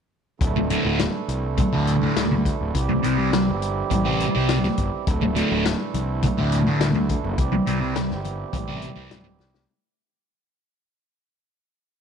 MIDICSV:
0, 0, Header, 1, 6, 480
1, 0, Start_track
1, 0, Tempo, 581959
1, 343, Time_signature, 4, 2, 24, 8
1, 5142, Tempo, 573066
1, 9974, End_track
2, 0, Start_track
2, 0, Title_t, "Harmonium"
2, 0, Program_c, 0, 20
2, 331, Note_on_c, 0, 52, 69
2, 333, Note_on_c, 0, 62, 56
2, 333, Note_on_c, 0, 69, 81
2, 336, Note_on_c, 0, 64, 62
2, 338, Note_on_c, 0, 57, 70
2, 2246, Note_off_c, 0, 62, 0
2, 2246, Note_off_c, 0, 69, 0
2, 2248, Note_off_c, 0, 57, 0
2, 2263, Note_on_c, 0, 60, 66
2, 2263, Note_on_c, 0, 67, 82
2, 2264, Note_on_c, 0, 55, 63
2, 4165, Note_off_c, 0, 60, 0
2, 4165, Note_off_c, 0, 67, 0
2, 4166, Note_off_c, 0, 55, 0
2, 4173, Note_on_c, 0, 57, 58
2, 4173, Note_on_c, 0, 62, 65
2, 4178, Note_on_c, 0, 69, 78
2, 6079, Note_off_c, 0, 57, 0
2, 6079, Note_off_c, 0, 62, 0
2, 6082, Note_off_c, 0, 69, 0
2, 6099, Note_on_c, 0, 55, 64
2, 6099, Note_on_c, 0, 67, 79
2, 6103, Note_on_c, 0, 60, 59
2, 7987, Note_off_c, 0, 52, 0
2, 7989, Note_off_c, 0, 64, 0
2, 8004, Note_off_c, 0, 55, 0
2, 8004, Note_off_c, 0, 67, 0
2, 8006, Note_off_c, 0, 60, 0
2, 9974, End_track
3, 0, Start_track
3, 0, Title_t, "Distorted electric guitar"
3, 0, Program_c, 1, 30
3, 580, Note_on_c, 1, 38, 76
3, 583, Note_on_c, 1, 45, 73
3, 591, Note_on_c, 1, 50, 72
3, 690, Note_off_c, 1, 50, 0
3, 692, Note_off_c, 1, 45, 0
3, 696, Note_off_c, 1, 38, 0
3, 700, Note_on_c, 1, 50, 72
3, 702, Note_on_c, 1, 45, 59
3, 706, Note_on_c, 1, 38, 55
3, 815, Note_off_c, 1, 38, 0
3, 820, Note_off_c, 1, 45, 0
3, 821, Note_off_c, 1, 50, 0
3, 1423, Note_on_c, 1, 50, 87
3, 1429, Note_on_c, 1, 45, 78
3, 1435, Note_on_c, 1, 38, 63
3, 1582, Note_off_c, 1, 50, 0
3, 1585, Note_off_c, 1, 45, 0
3, 1587, Note_off_c, 1, 38, 0
3, 1662, Note_on_c, 1, 50, 67
3, 1669, Note_on_c, 1, 45, 68
3, 1675, Note_on_c, 1, 38, 65
3, 1822, Note_off_c, 1, 50, 0
3, 1825, Note_off_c, 1, 45, 0
3, 1828, Note_off_c, 1, 38, 0
3, 2499, Note_on_c, 1, 48, 78
3, 2504, Note_on_c, 1, 55, 82
3, 2508, Note_on_c, 1, 60, 75
3, 2613, Note_off_c, 1, 60, 0
3, 2615, Note_off_c, 1, 55, 0
3, 2622, Note_off_c, 1, 48, 0
3, 2623, Note_on_c, 1, 60, 64
3, 2625, Note_on_c, 1, 55, 61
3, 2632, Note_on_c, 1, 48, 56
3, 2728, Note_off_c, 1, 48, 0
3, 2731, Note_off_c, 1, 55, 0
3, 2734, Note_off_c, 1, 60, 0
3, 3343, Note_on_c, 1, 60, 91
3, 3346, Note_on_c, 1, 55, 84
3, 3353, Note_on_c, 1, 48, 75
3, 3502, Note_off_c, 1, 60, 0
3, 3504, Note_off_c, 1, 55, 0
3, 3508, Note_off_c, 1, 48, 0
3, 3586, Note_on_c, 1, 60, 78
3, 3593, Note_on_c, 1, 55, 68
3, 3599, Note_on_c, 1, 48, 64
3, 3743, Note_off_c, 1, 60, 0
3, 3747, Note_off_c, 1, 55, 0
3, 3750, Note_off_c, 1, 48, 0
3, 4417, Note_on_c, 1, 38, 75
3, 4424, Note_on_c, 1, 45, 89
3, 4426, Note_on_c, 1, 50, 75
3, 4531, Note_off_c, 1, 50, 0
3, 4535, Note_off_c, 1, 45, 0
3, 4541, Note_off_c, 1, 38, 0
3, 4541, Note_on_c, 1, 50, 67
3, 4545, Note_on_c, 1, 45, 58
3, 4550, Note_on_c, 1, 38, 61
3, 4652, Note_off_c, 1, 38, 0
3, 4653, Note_off_c, 1, 45, 0
3, 4660, Note_off_c, 1, 50, 0
3, 5263, Note_on_c, 1, 50, 78
3, 5267, Note_on_c, 1, 45, 82
3, 5277, Note_on_c, 1, 38, 75
3, 5419, Note_off_c, 1, 50, 0
3, 5422, Note_off_c, 1, 45, 0
3, 5426, Note_off_c, 1, 38, 0
3, 5504, Note_on_c, 1, 50, 74
3, 5510, Note_on_c, 1, 45, 60
3, 5512, Note_on_c, 1, 38, 65
3, 5661, Note_off_c, 1, 50, 0
3, 5663, Note_off_c, 1, 45, 0
3, 5664, Note_off_c, 1, 38, 0
3, 6339, Note_on_c, 1, 48, 75
3, 6340, Note_on_c, 1, 55, 82
3, 6344, Note_on_c, 1, 60, 85
3, 6445, Note_off_c, 1, 60, 0
3, 6452, Note_off_c, 1, 55, 0
3, 6455, Note_on_c, 1, 60, 70
3, 6458, Note_off_c, 1, 48, 0
3, 6462, Note_on_c, 1, 55, 59
3, 6468, Note_on_c, 1, 48, 66
3, 6567, Note_off_c, 1, 48, 0
3, 6569, Note_off_c, 1, 55, 0
3, 6573, Note_off_c, 1, 60, 0
3, 7188, Note_on_c, 1, 60, 85
3, 7191, Note_on_c, 1, 55, 76
3, 7199, Note_on_c, 1, 48, 75
3, 7344, Note_off_c, 1, 60, 0
3, 7345, Note_off_c, 1, 55, 0
3, 7349, Note_off_c, 1, 48, 0
3, 7423, Note_on_c, 1, 60, 90
3, 7427, Note_on_c, 1, 55, 62
3, 7428, Note_on_c, 1, 48, 63
3, 7581, Note_off_c, 1, 60, 0
3, 7583, Note_off_c, 1, 55, 0
3, 7584, Note_off_c, 1, 48, 0
3, 9974, End_track
4, 0, Start_track
4, 0, Title_t, "Fingered electric bass"
4, 0, Program_c, 2, 33
4, 335, Note_on_c, 2, 26, 94
4, 612, Note_off_c, 2, 26, 0
4, 696, Note_on_c, 2, 26, 93
4, 882, Note_off_c, 2, 26, 0
4, 1057, Note_on_c, 2, 36, 86
4, 1334, Note_off_c, 2, 36, 0
4, 1419, Note_on_c, 2, 38, 88
4, 1696, Note_off_c, 2, 38, 0
4, 1785, Note_on_c, 2, 38, 78
4, 2060, Note_off_c, 2, 38, 0
4, 2148, Note_on_c, 2, 26, 81
4, 2240, Note_off_c, 2, 26, 0
4, 2270, Note_on_c, 2, 36, 109
4, 2452, Note_off_c, 2, 36, 0
4, 2516, Note_on_c, 2, 36, 77
4, 2878, Note_on_c, 2, 31, 76
4, 2890, Note_off_c, 2, 36, 0
4, 3148, Note_off_c, 2, 31, 0
4, 3225, Note_on_c, 2, 33, 96
4, 3499, Note_off_c, 2, 33, 0
4, 3591, Note_on_c, 2, 36, 79
4, 3863, Note_off_c, 2, 36, 0
4, 3940, Note_on_c, 2, 31, 83
4, 4034, Note_off_c, 2, 31, 0
4, 4180, Note_on_c, 2, 26, 111
4, 4454, Note_off_c, 2, 26, 0
4, 4547, Note_on_c, 2, 26, 96
4, 4728, Note_off_c, 2, 26, 0
4, 4898, Note_on_c, 2, 36, 90
4, 5171, Note_off_c, 2, 36, 0
4, 5258, Note_on_c, 2, 38, 80
4, 5534, Note_off_c, 2, 38, 0
4, 5613, Note_on_c, 2, 38, 86
4, 5891, Note_off_c, 2, 38, 0
4, 5979, Note_on_c, 2, 30, 71
4, 6073, Note_off_c, 2, 30, 0
4, 6099, Note_on_c, 2, 36, 101
4, 6284, Note_off_c, 2, 36, 0
4, 6345, Note_on_c, 2, 36, 80
4, 6710, Note_on_c, 2, 31, 84
4, 6723, Note_off_c, 2, 36, 0
4, 6982, Note_off_c, 2, 31, 0
4, 7065, Note_on_c, 2, 33, 88
4, 7339, Note_off_c, 2, 33, 0
4, 7425, Note_on_c, 2, 36, 89
4, 7516, Note_off_c, 2, 36, 0
4, 7547, Note_on_c, 2, 26, 76
4, 7763, Note_off_c, 2, 26, 0
4, 7786, Note_on_c, 2, 36, 76
4, 8002, Note_off_c, 2, 36, 0
4, 9974, End_track
5, 0, Start_track
5, 0, Title_t, "Muted distorted electric guitar strokes"
5, 463, Note_on_c, 9, 29, 53
5, 546, Note_off_c, 9, 29, 0
5, 825, Note_on_c, 9, 29, 41
5, 908, Note_off_c, 9, 29, 0
5, 1298, Note_on_c, 9, 29, 42
5, 1381, Note_off_c, 9, 29, 0
5, 1905, Note_on_c, 9, 29, 38
5, 1988, Note_off_c, 9, 29, 0
5, 2384, Note_on_c, 9, 29, 49
5, 2467, Note_off_c, 9, 29, 0
5, 2738, Note_on_c, 9, 29, 39
5, 2820, Note_off_c, 9, 29, 0
5, 3220, Note_on_c, 9, 29, 49
5, 3302, Note_off_c, 9, 29, 0
5, 3829, Note_on_c, 9, 29, 46
5, 3911, Note_off_c, 9, 29, 0
5, 4304, Note_on_c, 9, 29, 42
5, 4387, Note_off_c, 9, 29, 0
5, 4661, Note_on_c, 9, 29, 47
5, 4744, Note_off_c, 9, 29, 0
5, 5142, Note_on_c, 9, 29, 44
5, 5226, Note_off_c, 9, 29, 0
5, 5739, Note_on_c, 9, 29, 46
5, 5822, Note_off_c, 9, 29, 0
5, 6219, Note_on_c, 9, 29, 44
5, 6303, Note_off_c, 9, 29, 0
5, 6577, Note_on_c, 9, 29, 40
5, 6661, Note_off_c, 9, 29, 0
5, 7066, Note_on_c, 9, 29, 45
5, 7150, Note_off_c, 9, 29, 0
5, 7661, Note_on_c, 9, 29, 42
5, 7744, Note_off_c, 9, 29, 0
5, 9974, End_track
6, 0, Start_track
6, 0, Title_t, "Drums"
6, 337, Note_on_c, 9, 36, 110
6, 339, Note_on_c, 9, 42, 85
6, 420, Note_off_c, 9, 36, 0
6, 421, Note_off_c, 9, 42, 0
6, 578, Note_on_c, 9, 42, 63
6, 661, Note_off_c, 9, 42, 0
6, 820, Note_on_c, 9, 42, 86
6, 822, Note_on_c, 9, 38, 99
6, 902, Note_off_c, 9, 42, 0
6, 904, Note_off_c, 9, 38, 0
6, 1061, Note_on_c, 9, 42, 64
6, 1144, Note_off_c, 9, 42, 0
6, 1300, Note_on_c, 9, 42, 81
6, 1301, Note_on_c, 9, 36, 113
6, 1382, Note_off_c, 9, 42, 0
6, 1384, Note_off_c, 9, 36, 0
6, 1543, Note_on_c, 9, 42, 62
6, 1626, Note_off_c, 9, 42, 0
6, 1784, Note_on_c, 9, 42, 84
6, 1786, Note_on_c, 9, 38, 99
6, 1867, Note_off_c, 9, 42, 0
6, 1868, Note_off_c, 9, 38, 0
6, 2024, Note_on_c, 9, 36, 85
6, 2027, Note_on_c, 9, 42, 64
6, 2107, Note_off_c, 9, 36, 0
6, 2109, Note_off_c, 9, 42, 0
6, 2266, Note_on_c, 9, 36, 107
6, 2266, Note_on_c, 9, 42, 89
6, 2348, Note_off_c, 9, 42, 0
6, 2349, Note_off_c, 9, 36, 0
6, 2508, Note_on_c, 9, 42, 61
6, 2591, Note_off_c, 9, 42, 0
6, 2747, Note_on_c, 9, 42, 73
6, 2748, Note_on_c, 9, 38, 98
6, 2829, Note_off_c, 9, 42, 0
6, 2831, Note_off_c, 9, 38, 0
6, 2986, Note_on_c, 9, 42, 61
6, 3068, Note_off_c, 9, 42, 0
6, 3224, Note_on_c, 9, 42, 82
6, 3226, Note_on_c, 9, 36, 104
6, 3307, Note_off_c, 9, 42, 0
6, 3309, Note_off_c, 9, 36, 0
6, 3465, Note_on_c, 9, 42, 51
6, 3548, Note_off_c, 9, 42, 0
6, 3701, Note_on_c, 9, 42, 76
6, 3702, Note_on_c, 9, 38, 96
6, 3783, Note_off_c, 9, 42, 0
6, 3785, Note_off_c, 9, 38, 0
6, 3822, Note_on_c, 9, 38, 27
6, 3904, Note_off_c, 9, 38, 0
6, 3938, Note_on_c, 9, 42, 64
6, 3943, Note_on_c, 9, 36, 79
6, 4021, Note_off_c, 9, 42, 0
6, 4025, Note_off_c, 9, 36, 0
6, 4181, Note_on_c, 9, 42, 87
6, 4183, Note_on_c, 9, 36, 111
6, 4263, Note_off_c, 9, 42, 0
6, 4265, Note_off_c, 9, 36, 0
6, 4422, Note_on_c, 9, 42, 64
6, 4505, Note_off_c, 9, 42, 0
6, 4663, Note_on_c, 9, 42, 80
6, 4665, Note_on_c, 9, 38, 91
6, 4746, Note_off_c, 9, 42, 0
6, 4747, Note_off_c, 9, 38, 0
6, 4901, Note_on_c, 9, 42, 64
6, 4902, Note_on_c, 9, 64, 70
6, 4983, Note_off_c, 9, 42, 0
6, 4985, Note_off_c, 9, 64, 0
6, 5135, Note_on_c, 9, 42, 77
6, 5137, Note_on_c, 9, 36, 91
6, 5219, Note_off_c, 9, 42, 0
6, 5220, Note_off_c, 9, 36, 0
6, 5380, Note_on_c, 9, 42, 59
6, 5384, Note_on_c, 9, 63, 76
6, 5464, Note_off_c, 9, 42, 0
6, 5468, Note_off_c, 9, 63, 0
6, 5509, Note_on_c, 9, 63, 56
6, 5593, Note_off_c, 9, 63, 0
6, 5621, Note_on_c, 9, 42, 84
6, 5623, Note_on_c, 9, 38, 104
6, 5705, Note_off_c, 9, 42, 0
6, 5707, Note_off_c, 9, 38, 0
6, 5746, Note_on_c, 9, 63, 73
6, 5830, Note_off_c, 9, 63, 0
6, 5862, Note_on_c, 9, 36, 94
6, 5863, Note_on_c, 9, 42, 73
6, 5866, Note_on_c, 9, 64, 71
6, 5946, Note_off_c, 9, 36, 0
6, 5946, Note_off_c, 9, 42, 0
6, 5950, Note_off_c, 9, 64, 0
6, 5990, Note_on_c, 9, 63, 62
6, 6074, Note_off_c, 9, 63, 0
6, 6102, Note_on_c, 9, 42, 88
6, 6103, Note_on_c, 9, 36, 116
6, 6186, Note_off_c, 9, 36, 0
6, 6186, Note_off_c, 9, 42, 0
6, 6345, Note_on_c, 9, 42, 73
6, 6428, Note_off_c, 9, 42, 0
6, 6585, Note_on_c, 9, 42, 72
6, 6586, Note_on_c, 9, 38, 93
6, 6668, Note_off_c, 9, 42, 0
6, 6670, Note_off_c, 9, 38, 0
6, 6710, Note_on_c, 9, 38, 32
6, 6794, Note_off_c, 9, 38, 0
6, 6827, Note_on_c, 9, 64, 67
6, 6830, Note_on_c, 9, 42, 62
6, 6911, Note_off_c, 9, 64, 0
6, 6914, Note_off_c, 9, 42, 0
6, 7066, Note_on_c, 9, 36, 115
6, 7070, Note_on_c, 9, 42, 87
6, 7150, Note_off_c, 9, 36, 0
6, 7153, Note_off_c, 9, 42, 0
6, 7305, Note_on_c, 9, 63, 77
6, 7307, Note_on_c, 9, 42, 61
6, 7389, Note_off_c, 9, 63, 0
6, 7391, Note_off_c, 9, 42, 0
6, 7424, Note_on_c, 9, 63, 53
6, 7424, Note_on_c, 9, 64, 54
6, 7508, Note_off_c, 9, 63, 0
6, 7508, Note_off_c, 9, 64, 0
6, 7551, Note_on_c, 9, 42, 84
6, 7552, Note_on_c, 9, 38, 97
6, 7634, Note_off_c, 9, 42, 0
6, 7636, Note_off_c, 9, 38, 0
6, 7783, Note_on_c, 9, 64, 56
6, 7792, Note_on_c, 9, 38, 60
6, 7867, Note_off_c, 9, 64, 0
6, 7876, Note_off_c, 9, 38, 0
6, 7902, Note_on_c, 9, 63, 62
6, 7914, Note_on_c, 9, 38, 74
6, 7986, Note_off_c, 9, 63, 0
6, 7998, Note_off_c, 9, 38, 0
6, 9974, End_track
0, 0, End_of_file